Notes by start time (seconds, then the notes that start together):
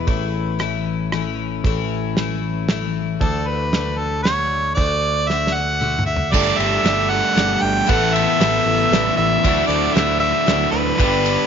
0.07 A1 A2 E3 A3 C#4 E4, kick
0.59 E3 A3 C#4 E4, cross-stick
1.12 E3 A3 C#4 E4, cross-stick
1.64 A1 A2 E3 A3 C#4 E4, kick
2.17 E3 A3 C#4 E4, snare
2.69 E3 A3 C#4 E4, snare
3.21 D2 D3 A3 D4 F#4 A4, kick
3.47 B4
3.73 D3 A3 D4 F#4, snare
3.98 A4
4.23 D3 A3 D4 F#4 C#5, snare
4.75 D2 D3 A3 D4 F#4 D5, kick
5.28 D3 A3 D4 F#4 E5, snare
5.47 snare
5.54 A3 D4 F#4 F#5
5.81 D3 A3 D4 F#4, mid tom
5.99 mid tom
6.06 A3 D4 F#4 E5
6.16 floor tom
6.32 G1 G3 A3 D4 G4 A4 D5, kick, crash
6.58 G1 E5, ride
6.83 G1 G3 A3 D4 G4 A4 D5, snare, ride
7.10 A3 D4 G4 F#5
7.35 G1 G3 A3 D4 G4 A4 D5, snare, ride
7.62 G1 G5
7.86 A1 A2 E3 A3 B3 A4 B4 E5 F#5, kick, ride
8.14 E5, ride
8.40 A1 E3 A3 B3 A4 B4 E5, snare, ride
8.66 A1
8.91 A1 E3 A3 B3 A4 B4 D5, snare, ride
9.17 A1 E5
9.44 D2 D3 F#3 A3 D4 E4 F#4 D5 E5, kick, ride
9.67 D2 D5, ride
9.94 D2 F#3 A3 D4 E4 F#4 D5 E5, snare, ride
10.20 E5
10.46 D2 F#3 A3 D4 E4 F#4 D5 F#5, snare, ride
10.71 D2 A3 D4 E4 B4
10.99 G1 G2 D3 G3 B3 D4 G4 B4 D5, kick, ride
11.26 ride